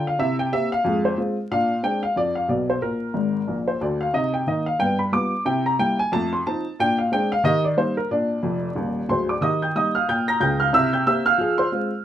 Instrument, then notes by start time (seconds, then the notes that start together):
upright piano
Already playing: D3 F4
0.07 F5
0.19 C3 E4 E5
0.39 G5
0.52 A#3 C4 G4 E5
0.72 F5
0.84 F2 G#3
1.05 C5
1.17 G#3 C4 F4
1.51 A#2 D4 F5
1.83 G#3 C4 D4 G5
2.03 F5
2.16 F2 D5
2.35 F5
2.48 B1 B2 D5
2.70 C5
2.82 A#2 A#4
3.14 G#1 G#2
3.48 A#1 A#2
3.68 C5
3.81 D2 D3 D5
4.01 F5
4.13 C3 D#4 D#5
4.34 G5
4.47 D#3 A#3 D#4 D#5
4.66 F5
4.79 G2 B3 G5
4.99 B5
5.12 G3 B3 F4 D6
5.45 C3 E4 G5
5.66 A#5
5.79 G3 A#3 E4 G5
5.99 G#5
6.12 F2 A3 A5
6.33 C6
6.46 F3 C4 D#4 A5
6.79 A#2 D4 G5
6.98 F5
7.12 G#3 C4 D4 G5
7.32 F5
7.44 D#3 G4 D#5
7.64 D5
7.77 G3 A#3 D#4 C5
7.97 A#4
8.11 A#2 D4 D5
8.43 F1 F2
8.75 D#1 D#2
9.09 D1 D2 C5 C6
9.29 D5 D6
9.41 D#3 G4 D#5 D#6
9.62 G5 G6
9.75 G3 A#3 D#4 D#5 D#6
9.95 F5 F6
10.08 A#2 G5 G6
10.28 A#5 A#6
10.40 C#2 C#3 G5 G6
10.60 F5 F6
10.73 C3 E4 E5 E6
10.93 G5 G6
11.06 A#3 C4 G4 E5 E6
11.26 F5 F6
11.38 F3 G#4
11.58 C5 C6
11.72 G#3 C4 F4